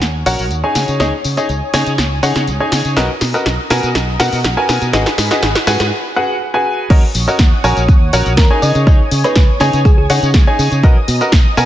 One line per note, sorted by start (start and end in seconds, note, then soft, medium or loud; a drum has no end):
0.00 0.22 D#2 medium
0.00 2.93 C#5 medium
0.00 0.74 F#5 medium
0.00 4.89 D#6 medium
0.00 snare medium
0.00 closed hi-hat medium
0.00 tambourine soft
0.26 0.37 A#1 loud
0.26 0.43 F#4 medium
0.26 0.43 A#4 medium
0.26 0.43 C#5 medium
0.26 0.43 F#5 loud
0.26 open hi-hat loud
0.26 tambourine medium
0.39 0.51 A#1 loud
0.39 open hi-hat medium
0.39 tambourine soft
0.51 0.62 D#2 medium
0.51 closed hi-hat medium
0.51 tambourine soft
0.64 0.97 D#4 medium
0.64 0.97 G#4 medium
0.64 0.97 C#5 medium
0.64 0.97 G#5 medium
0.75 0.86 C#3 medium
0.75 2.94 G#5 medium
0.75 snare medium
0.75 open hi-hat loud
0.75 tambourine medium
0.88 0.98 C#3 medium
0.88 closed hi-hat medium
0.88 tambourine soft
1.00 1.11 C#2 loud
1.00 1.11 D#4 medium
1.00 1.11 G#4 medium
1.00 1.11 C#5 medium
1.00 1.11 D#5 medium
1.00 snare medium
1.00 closed hi-hat medium
1.00 tambourine soft
1.24 1.35 C#3 medium
1.24 open hi-hat loud
1.24 tambourine medium
1.37 1.47 D#4 medium
1.37 1.47 G#4 medium
1.37 1.47 C#5 medium
1.37 1.47 D#5 medium
1.37 closed hi-hat medium
1.37 tambourine soft
1.49 1.60 C#2 medium
1.49 closed hi-hat medium
1.49 tambourine soft
1.74 1.85 C#3 medium
1.74 1.91 D#4 medium
1.74 1.91 G#4 medium
1.74 1.91 C#5 medium
1.74 1.91 G#5 loud
1.74 snare medium
1.74 open hi-hat loud
1.74 tambourine medium
1.87 1.96 C#3 medium
1.87 closed hi-hat medium
1.87 tambourine soft
1.98 2.19 C#2 medium
1.98 snare medium
1.98 closed hi-hat medium
1.98 tambourine soft
2.23 2.34 C#3 loud
2.23 2.40 D#4 medium
2.23 2.40 G#4 medium
2.23 2.40 C#5 medium
2.23 2.40 F#5 loud
2.23 open hi-hat loud
2.23 tambourine medium
2.36 2.49 C#3 loud
2.36 snare medium
2.36 closed hi-hat medium
2.36 tambourine soft
2.47 2.58 C#2 medium
2.47 closed hi-hat medium
2.47 tambourine soft
2.60 2.94 D#4 medium
2.60 2.94 G#4 medium
2.60 2.94 C#5 medium
2.60 2.94 G#5 medium
2.72 2.83 C#3 medium
2.72 snare medium
2.72 open hi-hat loud
2.72 tambourine medium
2.85 2.95 C#3 medium
2.85 closed hi-hat medium
2.85 tambourine soft
2.96 3.08 B1 loud
2.96 3.08 F#4 medium
2.96 3.08 A#4 medium
2.96 3.08 B4 medium
2.96 4.91 D#5 medium
2.96 3.08 D#5 medium
2.96 4.91 A#5 medium
2.96 snare medium
2.96 closed hi-hat medium
2.96 tambourine soft
3.21 3.32 B2 medium
3.21 snare medium
3.21 open hi-hat loud
3.21 tambourine medium
3.34 3.44 F#4 medium
3.34 3.44 A#4 medium
3.34 3.44 B4 medium
3.34 3.44 D#5 medium
3.34 closed hi-hat medium
3.34 tambourine soft
3.46 3.57 B1 medium
3.46 snare medium
3.46 closed hi-hat medium
3.46 tambourine soft
3.70 3.81 B2 medium
3.70 3.88 F#4 loud
3.70 3.88 A#4 medium
3.70 3.88 B4 medium
3.70 3.88 G#5 loud
3.70 snare medium
3.70 open hi-hat loud
3.70 tambourine medium
3.83 3.93 B2 medium
3.83 closed hi-hat medium
3.83 tambourine soft
3.95 4.16 B1 medium
3.95 snare medium
3.95 closed hi-hat medium
3.95 tambourine soft
4.20 4.30 B2 loud
4.20 4.37 F#4 medium
4.20 4.37 A#4 medium
4.20 4.37 B4 medium
4.20 4.37 F#5 loud
4.20 snare medium
4.20 open hi-hat loud
4.20 tambourine medium
4.32 4.46 B2 loud
4.32 open hi-hat medium
4.32 tambourine soft
4.44 4.55 B1 medium
4.44 snare medium
4.44 closed hi-hat medium
4.44 tambourine soft
4.57 4.91 F#4 medium
4.57 4.91 A#4 medium
4.57 4.91 B4 medium
4.57 4.91 G#5 medium
4.69 4.80 B2 medium
4.69 snare medium
4.69 open hi-hat loud
4.69 tambourine medium
4.82 4.91 B2 medium
4.82 closed hi-hat medium
4.82 tambourine soft
4.93 5.04 G#1 loud
4.93 5.04 F#4 medium
4.93 5.91 G#4 medium
4.93 5.04 G#4 medium
4.93 5.04 B4 medium
4.93 5.04 D#5 loud
4.93 5.91 F#5 medium
4.93 5.91 B5 medium
4.93 snare medium
4.93 closed hi-hat soft
4.93 tambourine soft
5.06 snare medium
5.18 5.29 G#2 loud
5.18 snare medium
5.18 open hi-hat loud
5.18 tambourine medium
5.31 5.41 F#4 medium
5.31 5.41 G#4 medium
5.31 5.41 B4 medium
5.31 5.41 D#5 medium
5.31 snare medium
5.31 closed hi-hat medium
5.31 tambourine soft
5.42 5.53 G#1 medium
5.42 snare loud
5.42 closed hi-hat medium
5.42 tambourine soft
5.55 snare medium
5.67 5.78 G#2 medium
5.67 5.84 F#4 loud
5.67 5.84 G#4 medium
5.67 5.84 B4 medium
5.67 5.84 G#5 loud
5.67 snare loud
5.67 open hi-hat loud
5.67 tambourine medium
5.80 5.90 G#2 medium
5.80 snare medium
5.80 closed hi-hat medium
5.80 tambourine soft
6.16 6.33 F#4 loud
6.16 6.33 G#4 medium
6.16 6.33 B4 medium
6.16 6.33 F#5 loud
6.54 6.87 F#4 medium
6.54 6.87 G#4 medium
6.54 6.87 B4 medium
6.54 6.87 G#5 medium
6.90 7.01 D#2 loud
6.90 7.01 F#4 medium
6.90 7.01 A#4 medium
6.90 8.61 C#5 medium
6.90 7.01 C#5 medium
6.90 7.01 D#5 loud
6.90 8.61 F#5 medium
6.90 8.61 D#6 medium
6.90 kick loud
6.90 closed hi-hat medium
6.90 crash loud
6.90 tambourine soft
7.15 7.26 A#1 loud
7.15 open hi-hat loud
7.15 tambourine medium
7.28 7.38 F#4 medium
7.28 7.38 A#4 medium
7.28 7.38 C#5 medium
7.28 7.38 D#5 medium
7.28 closed hi-hat medium
7.28 tambourine soft
7.39 7.50 D#2 medium
7.39 kick loud
7.39 snare loud
7.39 closed hi-hat medium
7.39 tambourine soft
7.64 7.75 A#1 loud
7.64 7.81 F#4 loud
7.64 7.81 A#4 medium
7.64 7.81 C#5 medium
7.64 7.81 G#5 loud
7.64 open hi-hat medium
7.64 tambourine medium
7.77 7.87 A#1 medium
7.77 closed hi-hat medium
7.77 tambourine soft
7.88 8.09 D#2 medium
7.88 kick loud
7.88 closed hi-hat medium
7.88 tambourine soft
8.13 8.24 A#1 loud
8.13 8.30 F#4 loud
8.13 8.30 A#4 medium
8.13 8.30 C#5 medium
8.13 8.30 F#5 loud
8.13 open hi-hat loud
8.13 tambourine medium
8.26 8.38 A#1 loud
8.26 closed hi-hat medium
8.26 tambourine soft
8.37 8.49 D#2 medium
8.37 8.60 A#4 medium
8.37 kick loud
8.37 snare loud
8.37 closed hi-hat medium
8.37 tambourine soft
8.51 8.84 D#4 medium
8.51 8.84 G#4 medium
8.51 8.84 C#5 medium
8.51 8.84 G#5 medium
8.62 8.73 C#3 medium
8.62 10.81 C#5 medium
8.62 8.79 D#5 medium
8.62 10.81 G#5 medium
8.62 11.65 D#6 medium
8.62 open hi-hat medium
8.62 tambourine medium
8.75 8.85 C#3 medium
8.75 closed hi-hat medium
8.75 tambourine soft
8.87 8.98 C#2 loud
8.87 8.98 D#4 medium
8.87 8.98 G#4 medium
8.87 8.98 C#5 medium
8.87 8.98 D#5 loud
8.87 kick loud
8.87 closed hi-hat medium
8.87 tambourine soft
9.11 9.22 C#3 loud
9.11 open hi-hat loud
9.11 tambourine medium
9.24 9.34 D#4 medium
9.24 9.34 G#4 medium
9.24 9.40 B4 medium
9.24 9.34 C#5 medium
9.24 9.34 D#5 medium
9.24 closed hi-hat medium
9.24 tambourine soft
9.36 9.47 C#2 medium
9.36 kick loud
9.36 snare loud
9.36 closed hi-hat medium
9.36 tambourine soft
9.60 9.71 C#3 medium
9.60 9.78 D#4 loud
9.60 9.78 G#4 medium
9.60 9.78 C#5 medium
9.60 9.78 G#5 loud
9.60 snare soft
9.60 open hi-hat medium
9.60 tambourine medium
9.73 9.83 C#3 medium
9.73 closed hi-hat medium
9.73 tambourine soft
9.85 10.06 C#2 medium
9.85 9.93 G#4 medium
9.85 kick loud
9.85 closed hi-hat medium
9.85 tambourine soft
9.98 10.06 G#4 medium
10.10 10.21 C#3 loud
10.10 10.27 D#4 loud
10.10 10.27 G#4 medium
10.10 10.27 C#5 medium
10.10 10.27 F#5 loud
10.10 open hi-hat loud
10.10 tambourine medium
10.23 10.36 C#3 loud
10.23 closed hi-hat medium
10.23 tambourine soft
10.34 10.45 C#2 medium
10.34 kick loud
10.34 snare loud
10.34 closed hi-hat medium
10.34 tambourine soft
10.47 10.81 D#4 medium
10.47 10.81 G#4 medium
10.47 10.81 C#5 medium
10.47 10.81 G#5 medium
10.59 10.70 C#3 medium
10.59 open hi-hat loud
10.59 tambourine medium
10.72 10.82 C#3 medium
10.72 closed hi-hat medium
10.72 tambourine soft
10.83 10.94 B1 loud
10.83 10.95 F#4 medium
10.83 10.95 A#4 medium
10.83 10.95 B4 medium
10.83 11.65 D#5 medium
10.83 10.95 D#5 loud
10.83 11.65 A#5 medium
10.83 kick loud
10.83 closed hi-hat medium
10.83 tambourine soft
11.08 11.19 B2 medium
11.08 open hi-hat loud
11.08 tambourine medium
11.21 11.31 F#4 medium
11.21 11.31 A#4 medium
11.21 11.31 B4 medium
11.21 11.31 D#5 medium
11.21 closed hi-hat medium
11.21 tambourine soft
11.32 11.44 B1 medium
11.32 kick loud
11.32 snare loud
11.32 closed hi-hat medium
11.32 tambourine soft
11.57 11.65 B2 loud
11.57 11.65 F#4 loud
11.57 11.65 A#4 medium
11.57 11.65 B4 medium
11.57 11.65 G#5 loud
11.57 open hi-hat loud
11.57 tambourine medium